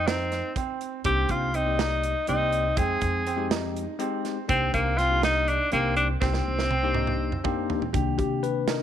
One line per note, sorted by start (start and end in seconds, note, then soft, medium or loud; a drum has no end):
0.00 0.40 F2 medium
0.07 0.56 C4 medium
0.07 0.49 D#4 medium
0.07 snare loud
0.07 closed hi-hat medium
0.32 snare soft
0.32 closed hi-hat medium
0.56 0.99 C4 medium
0.56 kick medium
0.56 closed hi-hat medium
0.81 closed hi-hat medium
1.04 1.26 C2 medium
1.04 1.51 A#3 medium
1.04 1.47 C4 medium
1.04 1.52 D4 medium
1.04 1.52 D#4 medium
1.04 1.32 G4 medium
1.04 1.52 G4 medium
1.04 kick loud
1.04 closed hi-hat medium
1.29 2.12 C2 medium
1.29 1.57 F4 medium
1.29 kick medium
1.29 closed hi-hat medium
1.54 1.76 C4 medium
1.54 2.28 D#4 medium
1.54 closed hi-hat medium
1.66 2.13 A#3 medium
1.66 2.13 D#4 medium
1.66 2.14 G4 medium
1.66 2.13 D5 medium
1.79 2.21 D#4 medium
1.79 snare loud
1.79 closed hi-hat medium
2.03 closed hi-hat medium
2.27 2.70 C2 medium
2.27 2.65 A#3 medium
2.27 2.70 C4 medium
2.27 2.79 D#4 medium
2.27 2.66 D#4 medium
2.27 2.66 G4 medium
2.27 2.66 D5 medium
2.27 closed hi-hat medium
2.52 closed hi-hat medium
2.76 2.98 F2 medium
2.76 3.24 G#3 medium
2.76 3.24 C4 medium
2.76 3.20 C4 medium
2.76 3.24 D#4 medium
2.76 3.51 G#4 medium
2.76 3.24 G5 medium
2.76 kick loud
2.76 closed hi-hat medium
3.01 3.85 F2 medium
3.01 kick medium
3.01 closed hi-hat medium
3.27 3.48 C4 medium
3.27 closed hi-hat medium
3.36 3.84 G#3 medium
3.36 3.84 C4 medium
3.36 3.85 D#4 medium
3.36 3.85 G4 medium
3.51 3.93 D#4 medium
3.51 snare loud
3.51 closed hi-hat medium
3.76 closed hi-hat medium
3.99 4.37 G#3 loud
3.99 4.37 C4 medium
3.99 4.42 C4 medium
3.99 4.37 D#4 medium
3.99 4.38 G4 medium
3.99 closed hi-hat medium
4.25 snare soft
4.25 closed hi-hat medium
4.48 4.70 C2 medium
4.48 4.95 A#3 medium
4.48 4.91 C4 medium
4.48 4.72 C4 medium
4.48 4.95 D4 medium
4.48 4.95 D#4 medium
4.48 4.96 G4 medium
4.48 kick loud
4.48 closed hi-hat medium
4.74 5.57 C2 medium
4.74 4.99 A#3 medium
4.74 kick medium
4.74 closed hi-hat medium
4.97 5.19 C4 medium
4.97 5.22 F4 loud
4.97 snare soft
4.97 closed hi-hat soft
5.09 5.57 A#3 medium
5.09 5.57 D4 medium
5.09 5.57 D#4 medium
5.09 5.58 G4 medium
5.23 5.65 D#4 medium
5.23 5.50 D#4 medium
5.23 snare medium
5.23 closed hi-hat medium
5.48 5.72 D4 medium
5.48 closed hi-hat medium
5.71 6.14 C2 loud
5.71 6.09 A#3 medium
5.71 5.95 A#3 medium
5.71 6.14 C4 medium
5.71 6.09 D4 medium
5.71 6.10 D#4 medium
5.71 6.10 G4 medium
5.71 closed hi-hat medium
5.96 6.08 D4 medium
5.96 closed hi-hat medium
6.21 6.42 C2 medium
6.21 6.68 A#3 medium
6.21 7.65 C4 medium
6.21 6.63 C4 medium
6.21 6.68 D4 medium
6.21 6.68 D#4 soft
6.21 6.69 G4 medium
6.21 kick loud
6.21 snare medium
6.33 snare soft
6.48 7.30 C2 medium
6.59 snare medium
6.70 6.91 C4 medium
6.70 high tom medium
6.83 7.30 A#3 medium
6.83 7.30 D4 medium
6.83 7.30 D#4 medium
6.83 7.30 G4 loud
6.94 7.37 D#4 medium
6.94 mid tom medium
7.07 mid tom medium
7.32 mid tom medium
7.44 7.82 A#3 medium
7.44 7.86 C4 medium
7.44 7.82 D4 medium
7.44 7.82 D#4 medium
7.44 7.82 G4 medium
7.44 kick medium
7.44 mid tom medium
7.70 floor tom medium
7.82 floor tom medium
7.93 8.15 C2 medium
7.93 8.83 D#3 soft
7.93 8.83 A#3 soft
7.93 8.83 D4 medium
7.93 8.14 G4 medium
7.93 kick loud
7.93 closed hi-hat medium
8.18 8.83 C3 medium
8.18 8.60 G4 medium
8.18 8.44 G4 medium
8.18 kick medium
8.18 closed hi-hat medium
8.43 8.68 B4 medium
8.43 closed hi-hat medium
8.68 8.83 D#4 medium
8.68 8.83 A#4 medium
8.68 snare medium
8.68 closed hi-hat medium